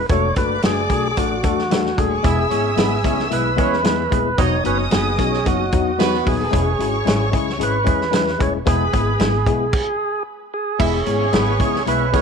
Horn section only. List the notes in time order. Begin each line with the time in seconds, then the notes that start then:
2.24 E4 E5
2.50 C#4 C#5
2.77 B3 B4
3.04 C#4 C#5
3.32 E4 E5
3.59 C#4 C#5
4.38 D#4 D#5
4.66 C#4 C#5
4.92 B3 B4
5.19 C#4 C#5
5.99 B3 B4
10.80 E4 E5
11.07 C#4 C#5
11.34 B3 B4
11.61 C#4 C#5
11.87 E4 E5
12.14 C#4 C#5